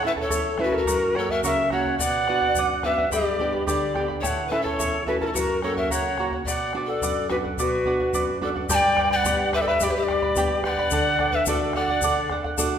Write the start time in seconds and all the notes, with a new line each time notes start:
Already playing: A2
0.03 A3 C#4 E4 A4 E5 A5, bombo rim
0.07 B4
0.16 E4 A4 A5, bombo low
0.21 A4 C#5
0.30 E2 E4 A4 C#5 E5 A5, bombo low, shaker
0.58 A3 C#4 E4 A4 B4 E5 A5, bombo rim, bombo low
0.63 F#4
0.71 E4 A4 A#4 A5, bombo low
0.78 F#4
0.85 F#2 A#4 C#5 F#5, bombo low, shaker
1.15 A#3 C#4 F#4 A4 A#4 C#5 F#5, bombo rim
1.29 A#4 C#5 E5 F#5, bombo low
1.43 C#3 A#4 C#5 E5 F#5, bombo low, shaker
1.70 A#3 C#4 F#4 A#4 C#5 F#5, bombo rim, bombo low
1.85 C#5 F#5, bombo low
1.98 B2 B4 D5 F#5, bombo low, shaker
2.28 B3 D4 F#4 B4 D5 F#5, bombo rim
2.41 D5 F#5, bombo low
2.55 F#2 B4 D5, bombo low, shaker
2.59 F#5
2.83 B3 D4 F#4 B4 D5 E5 F#5, bombo rim, bombo low
2.98 D5 F#5, bombo low
3.11 G2 G4 B4 D5 G5 B5, bombo low, shaker
3.39 B3 D4 G4 B4 D5 G5 B5, bombo low
3.52 B4 D5 B5, bombo low
3.67 D3 G4 B4 D5 G5 B5, bombo low, shaker
3.94 B3 D4 G4 B4 D5 G5 B5, bombo rim, bombo low
4.08 B4 D5 B5, bombo low
4.21 A2 E4 A4 C#5 E5 G5 A5, bombo low, shaker
4.27 F#5
4.48 A3 E4 B4 E5
4.52 C#4 E4 A4 A5, bombo rim
4.61 A4 C#5 A5, bombo low
4.66 E4
4.79 E2 E4 A4 C#5 E5 A5, bombo low, shaker
5.06 A3 C#4 E4 F#4 A4 B4 E5 A5, bombo low
5.20 E4 F#4 A4 A#4 A5, bombo low
5.26 E4 A4
5.33 F#2 F#4 A#4 B4 C#5 F#5, bombo low, shaker
5.40 A#4
5.62 A#3 C#4 F#4 A4 A#4 C#5 F#5, bombo rim
5.76 A#4 C#5 E5 F#5, bombo low
5.90 C#3 A#4 C#5 F#5, bombo low, shaker
6.18 A#3 C#4 F#4 A#4 C#5 F#5, bombo rim, bombo low
6.31 C#5 F#5, bombo low
6.45 B2 B4 D5 F#5, bombo low, shaker
6.73 B3 D4 F#4 B4 D5 F#5, bombo rim
6.86 A4 D5 F#5
6.92 D5
7.01 F#2 B4 D5 F#5, bombo low, shaker
7.29 B3 D4 F#4 B4 D5 F#5, bombo rim, bombo low
7.44 D5 F#5, bombo low
7.57 B2 F#4 B4 D5 F#5, bombo low, shaker
7.85 B3 D4 F#4 B4 D5 F#5, bombo low
8.00 D5 F#5, bombo low
8.13 F#2 B4 D5 F#5, bombo low, shaker
8.41 B3 D4 F#4 A4 B4 D5 F#5, bombo low
8.55 D5 F#5, bombo low
8.69 G2 G4 B4 D5 G5 A5 B5, bombo low, shaker
8.75 G5
8.97 B4 D5 G5 B5, bombo rim, bombo low
9.11 B4 D5 G5 B5, bombo low
9.16 F#5
9.25 B3 D4 G4 B4 D5 G5 B5, bombo low, shaker
9.52 B4 D5 E5 G5 B5, bombo rim, bombo low
9.61 A4 D5
9.66 B4 D5 E5 B5, bombo low
9.80 G2 G4 B4 D5 G5 B5, bombo low, shaker
9.90 G4 B4
9.96 G4 E5
10.03 D5
10.08 B4 D5 G5 B5, bombo rim, bombo low
10.22 B4 D5 B5, bombo low
10.36 B3 D4 G4 B4 D5 G5 B5, bombo low, shaker
10.64 B4 D5 G5 B5, bombo rim, bombo low
10.69 F#5
10.78 B4 D5 B5, bombo low
10.91 D3 A4 D5 F#5, bombo low, shaker
11.19 A4 D5 F#5, bombo rim, bombo low
11.32 B4 E5 F#5, bombo low
11.36 D5
11.46 A3 D4 F#4 A4 D5 F#5, bombo low, shaker
11.73 A4 D5 F#5, bombo rim, bombo low
11.88 D5 F#5, bombo low
12.02 D3 A4 D5 F#5, bombo low, shaker
12.30 A4 D5 F#5, bombo rim, bombo low
12.44 D5 F#5, bombo low
12.58 A3 D4 F#4 A4 D5 F#5, bombo low, shaker